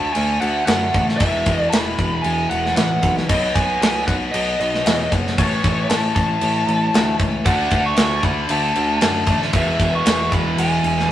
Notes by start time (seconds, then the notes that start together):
Already playing: D2 D3 A3 D4 A5
0.13 D2 G#5, crash
0.41 D2 F#5, crash
0.66 F#2 F#5, snare, crash
0.94 A1, kick, crash
1.09 snare
1.17 E1 E2 E5, kick, crash
1.22 B2 E3
1.46 E1, kick, crash
1.61 D5
1.70 E1 B5, snare, crash
1.98 E1, kick, crash
2.22 E1 G#5, crash
2.50 E1 F#5, crash
2.66 snare
2.76 A1 F#5, snare, crash
3.03 B1, kick, crash
3.18 snare
3.29 B1 B2 F#3 B3 D#5, kick, crash
3.55 B1 G#5, kick, crash
3.82 B1, snare, crash
4.07 B1 F#5, kick, crash
4.32 B1 D#5, crash
4.60 B1 D#5, crash
4.75 snare
4.86 E2, snare, crash
5.12 F#1, kick, crash
5.27 snare
5.38 A1 A2 E3 A3 C#5, kick, crash
5.64 A1, kick, crash
5.89 A1 A5, snare, crash
6.15 A1 A5, kick, crash
6.41 A1, crash
6.67 A1, crash
6.94 D2, snare, crash
7.19 C#2, kick, crash
7.45 D2 D3 A3 D4 F#5, kick, crash
7.71 D2, kick, crash
7.86 C#6
7.96 D2, snare, crash
8.23 D2 B5, kick, crash
8.49 D2 A5, crash
8.75 D2, crash
9.01 F#2 A5, snare, crash
9.26 A1 D3 A3 D4, kick, crash
9.42 snare
9.53 E1 E2 B2 E3 E5, kick, crash
9.79 E1, kick, crash
9.95 C#6
10.06 E1, snare, crash
10.32 E1 B5, kick, crash
10.57 E1 G#5, crash
10.84 E1, crash
10.99 snare